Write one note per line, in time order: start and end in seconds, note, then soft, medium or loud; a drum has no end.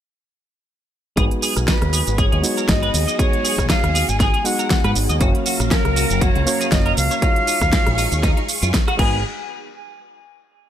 1.16 1.28 G#1 loud
1.16 2.40 G#3 medium
1.16 2.40 B3 medium
1.16 2.41 D#4 medium
1.16 5.17 F#4 medium
1.16 2.41 F#4 medium
1.16 1.24 G#4 medium
1.16 5.17 G#4 medium
1.16 2.41 B4 medium
1.16 kick loud
1.16 closed hi-hat loud
1.16 shaker soft
1.31 closed hi-hat soft
1.42 1.53 G#4 medium
1.42 open hi-hat loud
1.42 shaker medium
1.56 1.65 B1 medium
1.56 cross-stick medium
1.56 closed hi-hat soft
1.56 shaker soft
1.68 1.72 D#4 medium
1.68 2.20 B4 medium
1.68 kick loud
1.68 snare loud
1.68 closed hi-hat loud
1.68 shaker soft
1.82 2.01 D#2 medium
1.82 cross-stick medium
1.82 closed hi-hat soft
1.93 2.00 G#4 medium
1.93 open hi-hat medium
1.93 shaker medium
2.07 2.26 G#1 medium
2.07 closed hi-hat soft
2.07 shaker soft
2.18 2.25 G#4 medium
2.18 2.71 C#5 medium
2.18 kick loud
2.18 closed hi-hat medium
2.18 shaker soft
2.32 2.41 D#2 loud
2.32 2.36 G#4 medium
2.32 closed hi-hat soft
2.42 3.16 G#3 medium
2.42 3.16 B3 medium
2.42 3.16 D#4 medium
2.42 3.17 F#4 medium
2.42 open hi-hat loud
2.42 shaker medium
2.57 2.63 A#4 medium
2.57 closed hi-hat soft
2.57 shaker soft
2.69 2.89 G#1 medium
2.69 3.19 D#5 loud
2.69 kick loud
2.69 snare loud
2.69 closed hi-hat loud
2.69 shaker soft
2.82 2.88 B4 loud
2.82 closed hi-hat soft
2.94 3.05 D#2 medium
2.94 open hi-hat loud
2.94 shaker medium
3.08 3.11 D#5 medium
3.08 closed hi-hat soft
3.08 shaker soft
3.18 4.42 G#3 medium
3.18 4.42 B3 medium
3.18 4.42 D#4 medium
3.18 4.43 F#4 medium
3.18 3.26 G#4 medium
3.18 3.66 C#5 loud
3.18 kick loud
3.18 closed hi-hat medium
3.18 shaker soft
3.33 closed hi-hat soft
3.44 3.55 G#4 medium
3.44 open hi-hat loud
3.44 shaker medium
3.58 3.67 B1 medium
3.58 kick medium
3.58 cross-stick medium
3.58 shaker soft
3.69 3.74 D#4 medium
3.69 4.10 F5 loud
3.69 kick loud
3.69 snare loud
3.69 closed hi-hat medium
3.69 shaker soft
3.84 4.02 D#2 medium
3.84 cross-stick medium
3.84 closed hi-hat soft
3.95 4.02 G#4 medium
3.95 open hi-hat loud
3.95 shaker medium
4.09 4.28 G#1 medium
4.09 4.19 G#5 loud
4.09 closed hi-hat soft
4.09 shaker soft
4.20 4.27 G#4 medium
4.20 4.47 G#5 loud
4.20 kick loud
4.20 snare medium
4.20 closed hi-hat medium
4.20 shaker soft
4.34 4.37 G#4 medium
4.34 closed hi-hat soft
4.44 5.18 G#3 medium
4.44 5.18 B3 medium
4.44 5.18 D#4 medium
4.44 5.18 F#4 medium
4.44 4.96 F#5 loud
4.44 open hi-hat loud
4.44 shaker medium
4.59 4.65 A#4 medium
4.59 closed hi-hat soft
4.59 shaker soft
4.70 kick loud
4.70 snare loud
4.70 closed hi-hat medium
4.70 shaker soft
4.84 4.93 G#2 medium
4.84 4.90 B4 loud
4.84 cross-stick medium
4.84 closed hi-hat soft
4.95 5.06 G#1 medium
4.95 open hi-hat loud
4.95 shaker medium
5.09 5.18 D#2 medium
5.09 5.13 D#5 medium
5.09 closed hi-hat soft
5.09 shaker soft
5.20 5.32 F#1 loud
5.20 7.20 F#3 medium
5.20 6.44 A#3 medium
5.20 6.44 C#4 medium
5.20 5.28 F#4 medium
5.20 6.44 F#4 medium
5.20 6.45 C#5 medium
5.20 8.95 F5 medium
5.20 6.44 F5 medium
5.20 7.20 A#5 medium
5.20 kick loud
5.20 closed hi-hat medium
5.20 shaker soft
5.35 closed hi-hat soft
5.46 5.57 F#4 medium
5.46 open hi-hat loud
5.46 shaker medium
5.60 5.69 A#1 medium
5.60 cross-stick medium
5.60 closed hi-hat soft
5.60 shaker soft
5.71 5.75 C#4 medium
5.71 6.23 A#4 medium
5.71 kick loud
5.71 snare loud
5.71 closed hi-hat medium
5.71 shaker soft
5.85 6.04 C#2 medium
5.85 cross-stick medium
5.85 closed hi-hat soft
5.96 6.03 F#4 medium
5.96 open hi-hat loud
5.96 shaker medium
6.10 6.29 F#1 medium
6.10 closed hi-hat soft
6.10 shaker soft
6.21 6.29 F#4 medium
6.21 6.73 C#5 loud
6.21 kick loud
6.21 closed hi-hat medium
6.21 shaker soft
6.35 6.44 C#2 loud
6.35 6.39 F#4 medium
6.35 closed hi-hat soft
6.46 7.19 A#3 medium
6.46 7.19 C#4 medium
6.46 7.20 F#4 medium
6.46 7.20 C#5 medium
6.46 7.20 F5 medium
6.46 open hi-hat loud
6.46 shaker medium
6.61 6.66 G#4 medium
6.61 closed hi-hat soft
6.61 shaker soft
6.72 6.92 F#1 medium
6.72 6.96 D#5 loud
6.72 kick loud
6.72 snare loud
6.72 closed hi-hat medium
6.72 shaker soft
6.86 6.91 A#4 loud
6.86 closed hi-hat soft
6.97 7.08 C#2 medium
6.97 8.70 F5 loud
6.97 open hi-hat loud
6.97 shaker medium
7.11 7.15 C#5 medium
7.11 closed hi-hat soft
7.11 shaker soft
7.21 8.45 G#3 medium
7.21 8.45 D#4 medium
7.21 7.29 D#4 medium
7.21 8.46 F4 medium
7.21 8.46 F#4 medium
7.21 8.97 G#4 medium
7.21 8.46 C#5 medium
7.21 8.97 C#6 medium
7.21 kick loud
7.21 closed hi-hat medium
7.21 shaker soft
7.36 closed hi-hat soft
7.47 7.58 D#4 medium
7.47 open hi-hat loud
7.47 shaker medium
7.61 7.70 D#2 medium
7.61 kick medium
7.61 cross-stick medium
7.61 closed hi-hat soft
7.61 shaker soft
7.73 7.77 A#3 medium
7.73 kick loud
7.73 snare loud
7.73 closed hi-hat medium
7.73 shaker soft
7.86 8.06 A#1 medium
7.86 cross-stick medium
7.86 closed hi-hat soft
7.98 8.05 D#4 medium
7.98 open hi-hat loud
7.98 shaker medium
8.12 8.31 D#2 medium
8.12 closed hi-hat soft
8.12 shaker soft
8.23 8.30 D#4 medium
8.23 kick loud
8.23 snare medium
8.23 closed hi-hat medium
8.23 shaker soft
8.37 8.41 D#4 medium
8.37 closed hi-hat soft
8.49 open hi-hat loud
8.49 shaker medium
8.62 8.71 F#2 medium
8.62 8.68 F4 medium
8.62 closed hi-hat soft
8.62 shaker soft
8.74 kick loud
8.74 snare loud
8.74 closed hi-hat medium
8.74 shaker soft
8.87 8.93 F#4 loud
8.87 cross-stick medium
8.87 closed hi-hat soft
8.97 9.22 G#1 loud
8.97 9.17 G#3 medium
8.97 9.18 B3 medium
8.97 9.18 D#4 medium
8.97 9.19 F#4 medium
8.97 9.22 G#4 medium
8.97 9.19 B4 loud
8.97 9.22 F#5 medium
8.97 9.23 G#5 medium
8.97 9.23 B5 medium
8.97 kick loud
8.97 crash medium